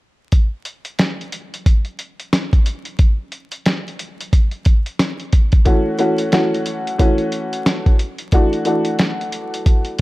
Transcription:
0.32 kick, closed hi-hat
0.65 closed hi-hat
0.85 closed hi-hat
0.99 snare, closed hi-hat
1.21 closed hi-hat
1.32 closed hi-hat
1.54 closed hi-hat
1.66 kick, closed hi-hat
1.85 closed hi-hat
1.99 closed hi-hat
2.20 closed hi-hat
2.33 snare, closed hi-hat
2.53 kick, closed hi-hat
2.66 closed hi-hat
2.85 closed hi-hat
2.99 kick, closed hi-hat
3.32 closed hi-hat
3.52 closed hi-hat
3.66 snare, closed hi-hat
3.88 closed hi-hat
3.99 closed hi-hat
4.20 closed hi-hat
4.33 kick, closed hi-hat
4.51 closed hi-hat
4.65 kick, closed hi-hat
4.86 closed hi-hat
4.99 snare, closed hi-hat
5.20 closed hi-hat
5.33 kick, closed hi-hat
5.52 kick, closed hi-hat
5.65 upright piano E3 A3 C#4 F#4, kick, closed hi-hat
5.98 upright piano E3 A3 C#4 F#4, closed hi-hat
6.18 closed hi-hat
6.32 upright piano E3 A3 C#4 F#4, snare, closed hi-hat
6.54 closed hi-hat
6.66 closed hi-hat
6.87 closed hi-hat
6.98 upright piano E3 A3 C#4 F#4, kick, closed hi-hat
7.18 closed hi-hat
7.32 closed hi-hat
7.53 closed hi-hat
7.66 snare, closed hi-hat
7.86 kick, closed hi-hat
7.99 closed hi-hat
8.18 closed hi-hat
8.32 upright piano E3 A3 D4 F#4, kick, closed hi-hat
8.53 closed hi-hat
8.65 upright piano E3 A3 D4 F#4, closed hi-hat
8.85 closed hi-hat
8.99 snare, closed hi-hat
9.21 closed hi-hat
9.32 closed hi-hat
9.54 closed hi-hat
9.66 kick, closed hi-hat
9.85 closed hi-hat

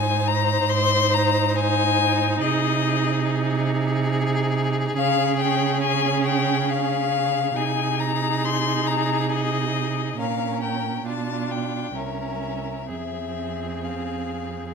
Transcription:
Already playing: cello G#2, viola D#4, violin C5 G#5
0.27 violin A#5
0.70 violin C6
1.14 violin A#5
1.56 violin G#5
2.41 cello C3, violin G#4 D#5
4.97 cello C#3, viola C#4, violin F5
5.39 violin G5
5.81 violin G#5
6.26 violin G5
6.70 violin F5
7.56 cello C3, viola D#4, violin G#4 G#5
8.00 violin A#5
8.45 violin C6
8.87 violin A#5
9.30 violin D#5
10.19 cello A#2, viola C#4, violin A#4 F5
10.62 violin G5
11.06 cello B2, viola D4, violin F4 A5
11.51 violin G5
11.95 cello C2, viola C#4, violin A#4 E5
12.89 cello F2, viola C4, violin G#4 E5
13.85 violin F5

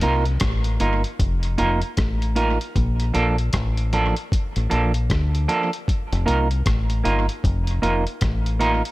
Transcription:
0.01 fingered electric bass C2, clean electric guitar A#3 D#4 F4 A#4, closed hi-hat
0.25 closed hi-hat
0.40 fingered electric bass A1, kick, cross-stick, closed hi-hat
0.64 closed hi-hat
0.80 fingered electric bass G1, clean electric guitar A#3 D#4 F4 A#4, closed hi-hat
1.04 closed hi-hat
1.20 fingered electric bass F1, kick, closed hi-hat
1.43 closed hi-hat
1.58 fingered electric bass F1, clean electric guitar A#3 D#4 F4 A#4, closed hi-hat
1.82 closed hi-hat
1.97 fingered electric bass A1, kick, cross-stick, closed hi-hat
2.22 closed hi-hat
2.36 clean electric guitar A#3 D#4 F4 A#4, closed hi-hat
2.61 closed hi-hat
2.76 fingered electric bass A#1, kick, closed hi-hat
3.00 closed hi-hat
3.14 fingered electric bass A#1, clean electric guitar F3 A#3 D4 A4, closed hi-hat
3.38 closed hi-hat
3.53 fingered electric bass A1, kick, cross-stick, closed hi-hat
3.77 closed hi-hat
3.93 clean electric guitar F3 A#3 D4 A4, closed hi-hat
4.17 closed hi-hat
4.32 kick, closed hi-hat
4.56 fingered electric bass A1, closed hi-hat
4.70 fingered electric bass A#1, clean electric guitar F3 A#3 D4 A4, closed hi-hat
4.94 closed hi-hat
5.10 fingered electric bass D2, kick, cross-stick, closed hi-hat
5.35 closed hi-hat
5.48 clean electric guitar F3 A#3 D4 A4, closed hi-hat
5.73 closed hi-hat
5.88 kick, closed hi-hat
6.12 fingered electric bass F1, closed hi-hat
6.26 fingered electric bass C2, clean electric guitar A#3 D#4 F4 A#4, closed hi-hat
6.51 closed hi-hat
6.66 fingered electric bass A1, kick, cross-stick, closed hi-hat
6.90 closed hi-hat
7.04 fingered electric bass G1, clean electric guitar A#3 D#4 F4 A#4, closed hi-hat
7.29 closed hi-hat
7.44 fingered electric bass F1, kick, closed hi-hat
7.67 closed hi-hat
7.82 fingered electric bass F1, clean electric guitar A#3 D#4 F4 A#4, closed hi-hat
8.07 closed hi-hat
8.21 fingered electric bass A1, kick, cross-stick, closed hi-hat
8.46 closed hi-hat
8.59 clean electric guitar A#3 D#4 F4 A#4, closed hi-hat
8.85 closed hi-hat

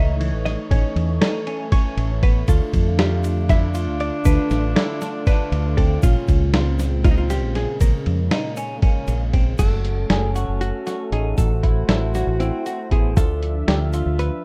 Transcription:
Already playing: fingered electric bass C#2, analog synth pad E3 A3 C#5, clean electric guitar D#4, alto saxophone D#4, hollow-body jazz guitar E5
0.20 clean electric guitar E3, ride
0.33 fingered electric bass A1
0.45 hollow-body jazz guitar D#5, snare, ride
0.71 fingered electric bass A1, clean electric guitar C#4, hollow-body jazz guitar C#5, kick, ride
0.96 fingered electric bass E2, ride
1.21 clean electric guitar D#4, hollow-body jazz guitar A4, snare, ride
1.47 clean electric guitar C#4, ride
1.72 clean electric guitar C#4, hollow-body jazz guitar C#5, kick, ride
1.97 fingered electric bass A1, ride
2.23 clean electric guitar B3, hollow-body jazz guitar B4, kick, ride
2.47 fingered electric bass D2, analog synth pad D3 A3 F4, alto saxophone D4, clean electric guitar F4, hollow-body jazz guitar A4, kick, ride, shaker
2.73 fingered electric bass F2, kick, ride, shaker
2.99 clean electric guitar F4, hollow-body jazz guitar G4, snare, ride
3.24 ride, shaker
3.49 clean electric guitar E4, hollow-body jazz guitar E5, kick, snare, ride, shaker
3.74 clean electric guitar F4, ride, shaker
3.88 fingered electric bass D2
4.00 hollow-body jazz guitar D5, ride
4.25 fingered electric bass D2, clean electric guitar D4, hollow-body jazz guitar B4, kick, ride, shaker
4.50 fingered electric bass A1, snare, ride, shaker
4.76 clean electric guitar E4, hollow-body jazz guitar A4, snare, ride
5.01 clean electric guitar D4, snare, ride, shaker
5.26 clean electric guitar D4, hollow-body jazz guitar B4, kick, snare, ride, shaker
5.52 fingered electric bass D2, ride
5.77 clean electric guitar C4, hollow-body jazz guitar A4, kick, ride
6.01 fingered electric bass A#1, analog synth pad A#2 C#3 G#3, alto saxophone C#4, clean electric guitar F4, hollow-body jazz guitar F4, kick, ride, shaker
6.28 fingered electric bass C#2, kick, ride, shaker
6.53 alto saxophone C4, clean electric guitar F4, snare, ride
6.79 snare, ride, shaker
7.04 clean electric guitar D#4, hollow-body jazz guitar F4, kick, ride, shaker
7.11 hollow-body jazz guitar D#4
7.18 hollow-body jazz guitar F4
7.30 clean electric guitar F4, hollow-body jazz guitar G4, snare, ride, shaker
7.43 fingered electric bass A#1
7.55 hollow-body jazz guitar G#4, snare, ride
7.81 fingered electric bass A#1, clean electric guitar C#3, hollow-body jazz guitar A#4, kick, ride, shaker
8.06 fingered electric bass F2, ride
8.31 clean electric guitar D#4, snare, ride
8.57 clean electric guitar C#4, ride, shaker
8.76 alto saxophone A3
8.82 alto saxophone A#3, clean electric guitar C#4, kick, ride
9.08 fingered electric bass A#1, ride, shaker
9.33 clean electric guitar C4, kick, ride
9.58 fingered electric bass F#1, analog synth pad A3 F#4 A4, alto saxophone C#4, clean electric guitar F#4, hollow-body jazz guitar A4, kick, closed hi-hat, crash, shaker
9.85 closed hi-hat
10.10 fingered electric bass F#1, clean electric guitar G#4, snare, closed hi-hat
10.35 clean electric guitar F#4, closed hi-hat, shaker
10.48 fingered electric bass F#1
10.61 hollow-body jazz guitar F#4, closed hi-hat, shaker
10.87 clean electric guitar F#4, snare, closed hi-hat, shaker
11.12 fingered electric bass A1, clean electric guitar D#4, hollow-body jazz guitar G#4, closed hi-hat
11.37 fingered electric bass A1, analog synth pad A3 E4 C5, alto saxophone F#4, hollow-body jazz guitar A4, kick, closed hi-hat, shaker
11.63 clean electric guitar E4, kick, closed hi-hat
11.89 fingered electric bass A1, clean electric guitar E4, hollow-body jazz guitar A4, snare, closed hi-hat
12.15 hollow-body jazz guitar F#4, snare, closed hi-hat, shaker
12.27 fingered electric bass A1
12.40 clean electric guitar C4, hollow-body jazz guitar E4, closed hi-hat, shaker
12.66 hollow-body jazz guitar F#4, closed hi-hat, shaker
12.91 fingered electric bass A1, clean electric guitar B3, alto saxophone E4, hollow-body jazz guitar G#4, kick, closed hi-hat
13.16 fingered electric bass D2, analog synth pad F3 D4 E5, alto saxophone D4, clean electric guitar F4, hollow-body jazz guitar A4, kick, closed hi-hat, shaker
13.43 closed hi-hat
13.67 fingered electric bass D2, alto saxophone F4, clean electric guitar G4, snare, closed hi-hat
13.93 clean electric guitar F4, closed hi-hat, shaker
14.06 fingered electric bass D2
14.19 hollow-body jazz guitar B4, closed hi-hat, shaker

